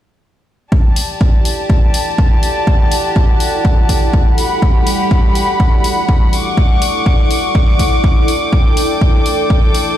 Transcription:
0, 0, Header, 1, 4, 480
1, 0, Start_track
1, 0, Tempo, 487805
1, 709, Time_signature, 4, 2, 24, 8
1, 9814, End_track
2, 0, Start_track
2, 0, Title_t, "Violin section"
2, 0, Program_c, 0, 48
2, 707, Note_on_c, 0, 67, 75
2, 707, Note_on_c, 0, 74, 68
2, 707, Note_on_c, 0, 81, 84
2, 4272, Note_off_c, 0, 67, 0
2, 4272, Note_off_c, 0, 74, 0
2, 4272, Note_off_c, 0, 81, 0
2, 4308, Note_on_c, 0, 67, 78
2, 4308, Note_on_c, 0, 78, 74
2, 4308, Note_on_c, 0, 83, 87
2, 6210, Note_off_c, 0, 67, 0
2, 6210, Note_off_c, 0, 83, 0
2, 6228, Note_on_c, 0, 86, 88
2, 6229, Note_on_c, 0, 85, 77
2, 8349, Note_off_c, 0, 78, 0
2, 8368, Note_off_c, 0, 85, 0
2, 8388, Note_on_c, 0, 79, 72
2, 8389, Note_on_c, 0, 69, 79
2, 9814, Note_off_c, 0, 69, 0
2, 9814, Note_off_c, 0, 79, 0
2, 9814, Note_off_c, 0, 86, 0
2, 9814, End_track
3, 0, Start_track
3, 0, Title_t, "Ambient pad"
3, 0, Program_c, 1, 92
3, 711, Note_on_c, 1, 64, 72
3, 922, Note_on_c, 1, 69, 85
3, 1033, Note_on_c, 1, 74, 81
3, 1632, Note_on_c, 1, 78, 88
3, 4312, Note_on_c, 1, 55, 81
3, 6231, Note_off_c, 1, 55, 0
3, 8389, Note_off_c, 1, 78, 0
3, 9140, Note_on_c, 1, 79, 73
3, 9814, Note_off_c, 1, 64, 0
3, 9814, Note_off_c, 1, 69, 0
3, 9814, Note_off_c, 1, 74, 0
3, 9814, Note_off_c, 1, 79, 0
3, 9814, End_track
4, 0, Start_track
4, 0, Title_t, "Drums"
4, 708, Note_on_c, 9, 36, 110
4, 807, Note_off_c, 9, 36, 0
4, 948, Note_on_c, 9, 46, 99
4, 1047, Note_off_c, 9, 46, 0
4, 1189, Note_on_c, 9, 36, 108
4, 1287, Note_off_c, 9, 36, 0
4, 1429, Note_on_c, 9, 46, 89
4, 1527, Note_off_c, 9, 46, 0
4, 1669, Note_on_c, 9, 36, 109
4, 1767, Note_off_c, 9, 36, 0
4, 1909, Note_on_c, 9, 46, 100
4, 2008, Note_off_c, 9, 46, 0
4, 2149, Note_on_c, 9, 36, 112
4, 2247, Note_off_c, 9, 36, 0
4, 2389, Note_on_c, 9, 46, 85
4, 2488, Note_off_c, 9, 46, 0
4, 2629, Note_on_c, 9, 36, 112
4, 2727, Note_off_c, 9, 36, 0
4, 2869, Note_on_c, 9, 46, 104
4, 2967, Note_off_c, 9, 46, 0
4, 3109, Note_on_c, 9, 36, 113
4, 3207, Note_off_c, 9, 36, 0
4, 3348, Note_on_c, 9, 46, 92
4, 3446, Note_off_c, 9, 46, 0
4, 3589, Note_on_c, 9, 36, 115
4, 3687, Note_off_c, 9, 36, 0
4, 3829, Note_on_c, 9, 36, 59
4, 3829, Note_on_c, 9, 46, 105
4, 3927, Note_off_c, 9, 36, 0
4, 3927, Note_off_c, 9, 46, 0
4, 4069, Note_on_c, 9, 36, 117
4, 4167, Note_off_c, 9, 36, 0
4, 4309, Note_on_c, 9, 46, 89
4, 4407, Note_off_c, 9, 46, 0
4, 4549, Note_on_c, 9, 36, 115
4, 4647, Note_off_c, 9, 36, 0
4, 4789, Note_on_c, 9, 46, 104
4, 4887, Note_off_c, 9, 46, 0
4, 5029, Note_on_c, 9, 36, 115
4, 5127, Note_off_c, 9, 36, 0
4, 5268, Note_on_c, 9, 46, 93
4, 5367, Note_off_c, 9, 46, 0
4, 5509, Note_on_c, 9, 36, 114
4, 5607, Note_off_c, 9, 36, 0
4, 5749, Note_on_c, 9, 46, 102
4, 5847, Note_off_c, 9, 46, 0
4, 5989, Note_on_c, 9, 36, 123
4, 6087, Note_off_c, 9, 36, 0
4, 6228, Note_on_c, 9, 46, 88
4, 6327, Note_off_c, 9, 46, 0
4, 6469, Note_on_c, 9, 36, 116
4, 6567, Note_off_c, 9, 36, 0
4, 6709, Note_on_c, 9, 46, 109
4, 6807, Note_off_c, 9, 46, 0
4, 6949, Note_on_c, 9, 36, 111
4, 7047, Note_off_c, 9, 36, 0
4, 7189, Note_on_c, 9, 46, 93
4, 7287, Note_off_c, 9, 46, 0
4, 7429, Note_on_c, 9, 36, 115
4, 7527, Note_off_c, 9, 36, 0
4, 7669, Note_on_c, 9, 36, 61
4, 7669, Note_on_c, 9, 46, 103
4, 7767, Note_off_c, 9, 36, 0
4, 7768, Note_off_c, 9, 46, 0
4, 7909, Note_on_c, 9, 36, 114
4, 8007, Note_off_c, 9, 36, 0
4, 8149, Note_on_c, 9, 46, 89
4, 8248, Note_off_c, 9, 46, 0
4, 8389, Note_on_c, 9, 36, 111
4, 8488, Note_off_c, 9, 36, 0
4, 8629, Note_on_c, 9, 46, 103
4, 8728, Note_off_c, 9, 46, 0
4, 8869, Note_on_c, 9, 36, 105
4, 8968, Note_off_c, 9, 36, 0
4, 9109, Note_on_c, 9, 46, 90
4, 9208, Note_off_c, 9, 46, 0
4, 9349, Note_on_c, 9, 36, 110
4, 9448, Note_off_c, 9, 36, 0
4, 9589, Note_on_c, 9, 46, 98
4, 9688, Note_off_c, 9, 46, 0
4, 9814, End_track
0, 0, End_of_file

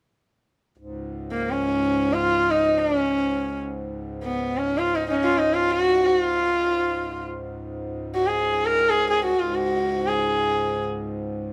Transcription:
0, 0, Header, 1, 3, 480
1, 0, Start_track
1, 0, Tempo, 500000
1, 11068, End_track
2, 0, Start_track
2, 0, Title_t, "Sarangi"
2, 0, Program_c, 0, 110
2, 1262, Note_on_c, 0, 58, 58
2, 1443, Note_on_c, 0, 61, 68
2, 1458, Note_off_c, 0, 58, 0
2, 2044, Note_on_c, 0, 65, 75
2, 2058, Note_off_c, 0, 61, 0
2, 2398, Note_on_c, 0, 63, 70
2, 2413, Note_off_c, 0, 65, 0
2, 2672, Note_on_c, 0, 62, 68
2, 2687, Note_off_c, 0, 63, 0
2, 2855, Note_off_c, 0, 62, 0
2, 2855, Note_on_c, 0, 61, 68
2, 3431, Note_off_c, 0, 61, 0
2, 4059, Note_on_c, 0, 59, 60
2, 4391, Note_on_c, 0, 61, 65
2, 4406, Note_off_c, 0, 59, 0
2, 4585, Note_on_c, 0, 65, 74
2, 4599, Note_off_c, 0, 61, 0
2, 4752, Note_on_c, 0, 63, 67
2, 4766, Note_off_c, 0, 65, 0
2, 4869, Note_off_c, 0, 63, 0
2, 4877, Note_on_c, 0, 63, 47
2, 4900, Note_on_c, 0, 61, 64
2, 4914, Note_off_c, 0, 63, 0
2, 5032, Note_on_c, 0, 65, 70
2, 5047, Note_off_c, 0, 61, 0
2, 5167, Note_on_c, 0, 63, 71
2, 5181, Note_off_c, 0, 65, 0
2, 5313, Note_on_c, 0, 65, 73
2, 5327, Note_off_c, 0, 63, 0
2, 5479, Note_on_c, 0, 66, 82
2, 5494, Note_off_c, 0, 65, 0
2, 5818, Note_off_c, 0, 66, 0
2, 5818, Note_on_c, 0, 66, 75
2, 5952, Note_off_c, 0, 66, 0
2, 5952, Note_on_c, 0, 65, 75
2, 6938, Note_off_c, 0, 65, 0
2, 7819, Note_on_c, 0, 66, 67
2, 7932, Note_on_c, 0, 68, 66
2, 7947, Note_off_c, 0, 66, 0
2, 8307, Note_on_c, 0, 70, 75
2, 8321, Note_off_c, 0, 68, 0
2, 8537, Note_on_c, 0, 68, 74
2, 8551, Note_off_c, 0, 70, 0
2, 8726, Note_off_c, 0, 68, 0
2, 8735, Note_on_c, 0, 68, 69
2, 8868, Note_off_c, 0, 68, 0
2, 8882, Note_on_c, 0, 66, 70
2, 9017, Note_on_c, 0, 65, 62
2, 9031, Note_off_c, 0, 66, 0
2, 9162, Note_on_c, 0, 66, 73
2, 9177, Note_off_c, 0, 65, 0
2, 9666, Note_on_c, 0, 68, 66
2, 9680, Note_off_c, 0, 66, 0
2, 10392, Note_off_c, 0, 68, 0
2, 11068, End_track
3, 0, Start_track
3, 0, Title_t, "Harmonium"
3, 0, Program_c, 1, 20
3, 744, Note_on_c, 1, 37, 52
3, 744, Note_on_c, 1, 44, 52
3, 8961, Note_off_c, 1, 37, 0
3, 8962, Note_off_c, 1, 44, 0
3, 8975, Note_on_c, 1, 37, 56
3, 8976, Note_on_c, 1, 44, 58
3, 11068, Note_off_c, 1, 37, 0
3, 11068, Note_off_c, 1, 44, 0
3, 11068, End_track
0, 0, End_of_file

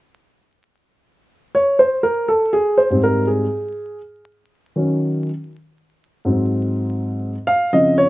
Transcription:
0, 0, Header, 1, 2, 480
1, 0, Start_track
1, 0, Key_signature, -4, "major"
1, 0, Tempo, 740741
1, 1169, Time_signature, 4, 2, 24, 8
1, 5244, End_track
2, 0, Start_track
2, 0, Title_t, "Grand piano"
2, 0, Program_c, 0, 0
2, 1002, Note_on_c, 0, 73, 89
2, 1154, Note_off_c, 0, 73, 0
2, 1160, Note_on_c, 0, 72, 85
2, 1313, Note_off_c, 0, 72, 0
2, 1316, Note_on_c, 0, 70, 81
2, 1471, Note_off_c, 0, 70, 0
2, 1480, Note_on_c, 0, 69, 78
2, 1633, Note_off_c, 0, 69, 0
2, 1639, Note_on_c, 0, 68, 84
2, 1798, Note_on_c, 0, 72, 80
2, 1809, Note_off_c, 0, 68, 0
2, 1881, Note_on_c, 0, 44, 50
2, 1888, Note_on_c, 0, 55, 48
2, 1893, Note_on_c, 0, 60, 56
2, 1952, Note_off_c, 0, 72, 0
2, 1966, Note_on_c, 0, 70, 78
2, 2116, Note_off_c, 0, 70, 0
2, 2120, Note_on_c, 0, 68, 64
2, 2221, Note_off_c, 0, 44, 0
2, 2225, Note_off_c, 0, 55, 0
2, 2227, Note_off_c, 0, 60, 0
2, 2579, Note_off_c, 0, 68, 0
2, 3082, Note_on_c, 0, 51, 47
2, 3087, Note_on_c, 0, 54, 45
2, 3090, Note_on_c, 0, 61, 57
2, 3422, Note_off_c, 0, 51, 0
2, 3424, Note_off_c, 0, 54, 0
2, 3426, Note_off_c, 0, 61, 0
2, 4049, Note_on_c, 0, 44, 48
2, 4055, Note_on_c, 0, 54, 46
2, 4056, Note_on_c, 0, 60, 50
2, 4743, Note_off_c, 0, 44, 0
2, 4746, Note_off_c, 0, 54, 0
2, 4747, Note_off_c, 0, 60, 0
2, 4841, Note_on_c, 0, 77, 93
2, 5006, Note_on_c, 0, 49, 49
2, 5009, Note_on_c, 0, 75, 87
2, 5010, Note_off_c, 0, 77, 0
2, 5014, Note_on_c, 0, 53, 46
2, 5014, Note_on_c, 0, 60, 54
2, 5158, Note_off_c, 0, 75, 0
2, 5170, Note_on_c, 0, 73, 89
2, 5244, Note_off_c, 0, 49, 0
2, 5244, Note_off_c, 0, 53, 0
2, 5244, Note_off_c, 0, 60, 0
2, 5244, Note_off_c, 0, 73, 0
2, 5244, End_track
0, 0, End_of_file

